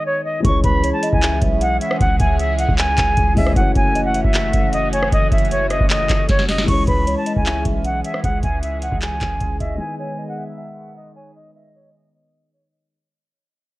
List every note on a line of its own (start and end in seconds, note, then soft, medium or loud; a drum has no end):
0.00 0.38 D#3 medium
0.00 0.40 G#3 medium
0.00 0.41 B3 medium
0.00 0.42 G#4 medium
0.00 0.43 B4 medium
0.06 0.21 C#5 medium
0.25 0.41 D#5 medium
0.40 3.31 E3 medium
0.40 3.32 G#3 medium
0.45 0.63 C#2 loud
0.45 3.53 E3 medium
0.45 3.53 G#3 medium
0.45 3.33 C#4 medium
0.45 3.53 C#4 medium
0.45 3.53 G#4 loud
0.45 3.34 G#4 medium
0.45 0.60 C#6 medium
0.45 kick loud
0.45 closed hi-hat medium
0.49 3.35 C#5 medium
0.64 0.92 C#2 loud
0.64 0.83 B4 medium
0.64 0.92 B5 medium
0.64 kick loud
0.64 closed hi-hat medium
0.84 1.02 C#5 medium
0.84 closed hi-hat medium
0.93 1.09 A5 medium
1.03 1.22 D#5 medium
1.03 closed hi-hat medium
1.13 1.41 C#2 loud
1.13 1.40 G#5 medium
1.13 kick loud
1.23 clap loud
1.23 closed hi-hat medium
1.42 1.79 B1 loud
1.42 kick medium
1.42 closed hi-hat medium
1.61 1.77 F#5 medium
1.61 closed hi-hat medium
1.81 1.96 E5 medium
1.81 1.99 F#5 medium
1.81 closed hi-hat medium
1.91 cross-stick loud
2.00 2.19 C#2 loud
2.00 2.16 F#5 loud
2.00 kick loud
2.00 closed hi-hat medium
2.20 2.67 C#2 loud
2.20 2.75 E5 medium
2.20 2.36 G#5 medium
2.20 kick loud
2.20 closed hi-hat medium
2.39 2.55 E5 medium
2.39 closed hi-hat medium
2.59 2.75 F#5 medium
2.59 closed hi-hat medium
2.69 2.97 C#2 loud
2.69 kick loud
2.78 3.33 G#5 loud
2.78 clap loud
2.78 closed hi-hat medium
2.97 3.17 C#2 loud
2.97 kick medium
2.97 clap medium
2.97 closed hi-hat medium
3.17 3.36 C#2 loud
3.17 kick medium
3.17 closed hi-hat medium
3.35 3.56 C#2 loud
3.35 3.50 E3 medium
3.35 3.56 G#3 soft
3.35 3.55 C#4 soft
3.35 3.57 G#4 soft
3.35 3.55 D#5 medium
3.35 3.53 E5 medium
3.35 kick medium
3.35 open hi-hat medium
3.39 3.57 C#5 medium
3.47 cross-stick medium
3.52 6.62 E3 medium
3.52 6.63 A3 medium
3.56 3.75 F#1 loud
3.56 6.65 E3 medium
3.56 6.65 A3 medium
3.56 6.64 C#4 medium
3.56 6.65 C#4 medium
3.56 6.65 F#4 medium
3.56 3.72 F#5 medium
3.56 kick loud
3.56 closed hi-hat medium
3.61 6.66 C#5 medium
3.76 4.23 F#1 loud
3.76 3.94 C#5 medium
3.76 4.04 G#5 medium
3.76 kick loud
3.76 closed hi-hat medium
3.95 4.14 D#5 medium
3.95 closed hi-hat medium
4.05 4.21 F#5 medium
4.14 4.33 E5 medium
4.14 closed hi-hat medium
4.24 4.53 F#1 loud
4.24 4.70 E5 medium
4.24 kick loud
4.34 4.89 F#5 loud
4.34 clap loud
4.34 closed hi-hat medium
4.53 5.10 F#1 loud
4.53 kick medium
4.53 closed hi-hat medium
4.73 4.89 D#5 medium
4.73 closed hi-hat medium
4.93 5.08 C#5 medium
4.93 5.11 G#5 medium
4.93 closed hi-hat medium
5.02 cross-stick medium
5.12 5.31 F#1 loud
5.12 5.28 D#5 loud
5.12 kick loud
5.12 closed hi-hat medium
5.32 5.78 F#1 loud
5.32 5.87 E5 medium
5.32 5.48 E5 medium
5.32 kick loud
5.32 closed hi-hat medium
5.38 closed hi-hat medium
5.45 closed hi-hat soft
5.51 5.67 C#5 medium
5.51 closed hi-hat medium
5.70 5.86 D#5 medium
5.70 cross-stick medium
5.70 closed hi-hat medium
5.80 6.08 F#1 loud
5.80 kick loud
5.90 6.27 D#5 loud
5.90 clap loud
5.90 closed hi-hat medium
6.09 6.28 F#1 loud
6.09 kick medium
6.09 clap medium
6.09 closed hi-hat medium
6.29 6.66 F#1 loud
6.29 6.45 C#5 loud
6.29 kick loud
6.29 snare medium
6.29 closed hi-hat medium
6.39 snare medium
6.49 6.64 D#5 medium
6.49 snare loud
6.49 open hi-hat medium
6.58 snare loud
6.64 9.74 E3 medium
6.64 9.75 G#3 medium
6.68 6.87 C#2 loud
6.68 9.77 E3 medium
6.68 12.87 G#3 medium
6.68 9.77 C#4 medium
6.68 9.76 C#4 medium
6.68 12.87 G#4 medium
6.68 9.77 G#4 medium
6.68 6.83 C#6 medium
6.68 kick loud
6.68 closed hi-hat medium
6.68 crash medium
6.72 9.78 C#5 medium
6.87 7.16 C#2 loud
6.87 7.06 B4 medium
6.87 7.15 B5 medium
6.87 kick loud
6.87 closed hi-hat medium
7.07 7.26 C#5 medium
7.07 closed hi-hat medium
7.17 7.33 A5 medium
7.26 7.45 D#5 medium
7.26 closed hi-hat medium
7.36 7.64 C#2 loud
7.36 7.63 G#5 medium
7.36 kick medium
7.46 8.01 E5 medium
7.46 clap loud
7.46 closed hi-hat medium
7.65 8.03 B1 loud
7.65 kick medium
7.65 closed hi-hat medium
7.85 8.01 F#5 medium
7.85 closed hi-hat medium
8.04 8.20 E5 medium
8.04 8.23 F#5 medium
8.04 closed hi-hat medium
8.14 cross-stick medium
8.24 8.43 C#2 loud
8.24 8.39 F#5 loud
8.24 kick loud
8.24 closed hi-hat medium
8.43 8.90 C#2 loud
8.43 8.98 E5 medium
8.43 8.59 G#5 medium
8.43 kick loud
8.43 closed hi-hat medium
8.63 8.78 E5 medium
8.63 closed hi-hat medium
8.82 8.98 F#5 medium
8.82 closed hi-hat medium
8.92 9.20 C#2 loud
8.92 kick medium
9.02 9.57 G#5 medium
9.02 clap loud
9.02 closed hi-hat medium
9.21 9.40 C#2 loud
9.21 kick medium
9.21 clap medium
9.21 closed hi-hat medium
9.40 9.59 C#2 loud
9.40 kick medium
9.40 closed hi-hat medium
9.60 9.79 C#2 loud
9.60 9.79 D#5 loud
9.60 9.76 E5 medium
9.60 kick medium
9.60 closed hi-hat medium
9.75 12.85 D#3 medium
9.75 12.86 G#3 medium
9.75 9.95 G#5 medium
9.80 12.88 D#3 medium
9.80 12.87 B3 medium
9.80 12.88 B3 medium
9.80 12.88 G#4 medium
9.84 12.90 B4 medium
9.99 10.18 C#5 medium
9.99 10.26 G#5 medium
10.19 10.37 D#5 medium
10.28 10.44 F#5 medium
10.38 10.57 E5 medium
10.48 10.94 E5 medium
10.58 11.13 F#5 medium
10.96 11.12 D#5 medium
11.16 11.31 C#5 medium
11.16 11.35 G#5 medium
11.35 11.51 D#5 loud
11.55 12.10 D#5 medium
11.55 11.71 E5 medium
11.75 11.90 C#5 medium
11.95 12.10 D#5 medium
12.13 12.50 D#5 medium
12.53 12.68 C#5 medium
12.72 12.87 D#5 medium